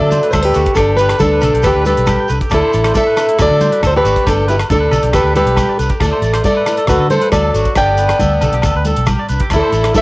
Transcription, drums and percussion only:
0.11 closed hi-hat, high conga, shekere
0.23 closed hi-hat
0.33 kick, cross-stick, closed hi-hat, muted conga, high conga, low agogo, shekere
0.54 closed hi-hat, shekere
0.66 kick, closed hi-hat
0.75 kick, cross-stick, closed hi-hat, muted conga, low agogo, shekere
0.98 closed hi-hat, muted conga, shekere
1.09 cross-stick, closed hi-hat, low agogo
1.19 kick, closed hi-hat, high conga, low conga, shekere
1.41 closed hi-hat, low conga, low agogo, shekere
1.55 closed hi-hat
1.63 kick, cross-stick, closed hi-hat, muted conga, low agogo, shekere
1.85 closed hi-hat, high conga, shekere
1.97 closed hi-hat
2.06 kick, cross-stick, closed hi-hat, muted conga, high conga, low agogo, shekere
2.28 closed hi-hat, shekere
2.41 kick, closed hi-hat
2.50 kick, cross-stick, closed hi-hat, muted conga, low agogo, shekere
2.73 closed hi-hat, muted conga, shekere
2.84 cross-stick, closed hi-hat, low agogo
2.94 kick, closed hi-hat, high conga, shekere
3.17 cross-stick, closed hi-hat, low agogo, shekere
3.28 closed hi-hat
3.39 kick, cross-stick, closed hi-hat, muted conga, low agogo, shekere
3.61 closed hi-hat, high conga, shekere
3.72 closed hi-hat
3.83 kick, cross-stick, closed hi-hat, muted conga, high conga, low agogo, shekere
4.05 closed hi-hat, shekere
4.16 kick, closed hi-hat
4.26 kick, cross-stick, closed hi-hat, muted conga, low agogo, shekere
4.48 closed hi-hat, muted conga, shekere
4.59 cross-stick, closed hi-hat, low agogo
4.70 kick, closed hi-hat, high conga, low conga, shekere
4.91 closed hi-hat, low conga, low agogo, shekere
5.03 closed hi-hat
5.13 kick, cross-stick, closed hi-hat, muted conga, low agogo, shekere
5.35 closed hi-hat, high conga, shekere
5.47 closed hi-hat
5.56 kick, cross-stick, closed hi-hat, muted conga, high conga, low agogo, shekere
5.79 closed hi-hat, shekere
5.89 kick, closed hi-hat
6.00 kick, cross-stick, closed hi-hat, muted conga, low agogo, shekere
6.22 closed hi-hat, muted conga, shekere
6.33 cross-stick, closed hi-hat, low agogo
6.44 kick, closed hi-hat, high conga, shekere
6.66 cross-stick, closed hi-hat, low agogo, shekere
6.77 closed hi-hat
6.87 kick, cross-stick, closed hi-hat, muted conga, low agogo, shekere
7.10 closed hi-hat, high conga, shekere
7.21 closed hi-hat
7.32 kick, cross-stick, closed hi-hat, muted conga, high conga, low agogo, shekere
7.54 closed hi-hat, shekere
7.65 kick, closed hi-hat
7.75 kick, cross-stick, closed hi-hat, muted conga, low agogo, shekere
7.97 closed hi-hat, muted conga, shekere
8.09 cross-stick, closed hi-hat, low agogo
8.19 kick, closed hi-hat, high conga, low conga, shekere
8.41 closed hi-hat, low conga, low agogo, shekere
8.53 closed hi-hat
8.62 kick, cross-stick, closed hi-hat, muted conga, low agogo, shekere
8.85 closed hi-hat, high conga, shekere
8.96 closed hi-hat
9.06 kick, cross-stick, closed hi-hat, muted conga, high conga, low agogo, shekere
9.29 closed hi-hat, shekere
9.40 kick, closed hi-hat
9.50 kick, cross-stick, closed hi-hat, muted conga, low agogo, shekere
9.72 closed hi-hat, muted conga, shekere
9.84 cross-stick, closed hi-hat, low agogo
9.94 kick, closed hi-hat, high conga, shekere

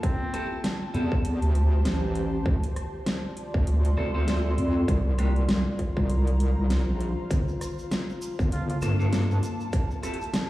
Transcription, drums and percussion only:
0.03 kick, closed hi-hat
0.34 cross-stick, closed hi-hat
0.64 snare, closed hi-hat
0.94 closed hi-hat
1.12 kick
1.25 closed hi-hat
1.42 closed hi-hat
1.55 closed hi-hat
1.85 snare, closed hi-hat
2.15 closed hi-hat
2.46 kick
2.63 closed hi-hat
2.76 cross-stick, closed hi-hat
3.06 snare, closed hi-hat
3.37 closed hi-hat
3.54 kick
3.67 closed hi-hat
3.85 closed hi-hat
3.98 cross-stick
4.28 snare, closed hi-hat
4.58 closed hi-hat
4.88 kick, cross-stick, closed hi-hat
5.19 cross-stick, closed hi-hat
5.36 closed hi-hat
5.49 snare, closed hi-hat
5.79 kick, closed hi-hat
5.97 kick
6.10 closed hi-hat
6.27 closed hi-hat
6.40 closed hi-hat
6.70 snare, closed hi-hat
7.00 closed hi-hat
7.31 kick, closed hi-hat, shaker
7.48 shaker
7.61 cross-stick, closed hi-hat, shaker
7.79 shaker
7.91 snare, closed hi-hat, shaker
8.09 shaker
8.22 closed hi-hat, shaker
8.39 kick, shaker
8.52 closed hi-hat, shaker
8.70 closed hi-hat, shaker
8.82 cross-stick, closed hi-hat, shaker
9.00 shaker
9.13 snare, closed hi-hat, shaker
9.31 shaker
9.43 closed hi-hat, shaker
9.60 shaker
9.73 kick, closed hi-hat, shaker
9.91 shaker
10.03 cross-stick, closed hi-hat, shaker
10.14 closed hi-hat
10.21 closed hi-hat, shaker
10.34 snare, closed hi-hat, shaker

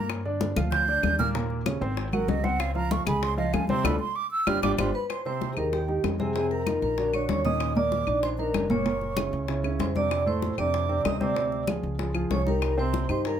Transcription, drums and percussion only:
0.09 high bongo, high conga, claves
0.25 high conga
0.41 high bongo, high conga
0.56 high bongo, high conga, low conga, claves
0.72 high bongo, high conga, low conga
0.88 high bongo, high conga
1.03 high bongo, low bongo, high conga, claves
1.19 high bongo, high conga
1.35 high bongo, high conga
1.50 high conga
1.66 high bongo, high conga, claves
1.82 high bongo
1.97 high bongo, high conga
2.13 high bongo, high conga, claves
2.28 high bongo, low bongo, high conga
2.44 high bongo, high conga
2.60 high bongo, claves
2.75 high conga
2.91 high bongo, high conga
3.07 high bongo, high conga, low conga, claves
3.23 high bongo, high conga
3.38 high bongo, high conga
3.54 high bongo, low bongo, high conga, claves
3.69 high bongo, high conga
3.85 high bongo, high conga, claves
4.47 high bongo, high conga, claves
4.63 high bongo, high conga, claves
4.78 high bongo, high conga, claves
5.10 high bongo, high conga, claves
5.26 high conga
5.41 high bongo, high conga
5.57 high conga, claves
5.73 high bongo, high conga
5.88 high conga
6.04 high bongo, low bongo, high conga, claves
6.20 high conga
6.35 high bongo, high conga
6.51 high bongo, high conga
6.67 high bongo, high conga, claves
6.82 high bongo, high conga
6.98 high bongo, high conga
7.13 high bongo, high conga, claves
7.29 high bongo, low bongo, high conga
7.45 high conga
7.60 high bongo, high conga, claves
7.76 high conga
7.92 high bongo, high conga
8.07 high conga, claves
8.23 high bongo, high conga
8.39 high conga
8.54 high bongo, low bongo, high conga, claves
8.70 high conga
8.86 high bongo, high conga
9.01 high bongo, high conga
9.17 high bongo, high conga, claves
9.33 high bongo, high conga
9.48 high bongo, high conga
9.64 high bongo, high conga, claves
9.80 high bongo, low bongo, high conga
9.96 high conga
10.11 high bongo, high conga, claves
10.27 high conga
10.42 high bongo, high conga
10.58 high conga, claves
10.74 high bongo, high conga
10.90 high conga
11.05 high bongo, low bongo, high conga, claves
11.21 high conga
11.36 high bongo, high conga
11.52 high bongo, high conga
11.67 high bongo, high conga, claves
11.83 high bongo, high conga
11.99 high bongo, high conga
12.15 high bongo, high conga, claves
12.31 high bongo, low bongo, high conga
12.47 high conga
12.62 high bongo, claves
12.78 high conga
12.94 high bongo, high conga
13.09 high conga, claves
13.25 high bongo, high conga

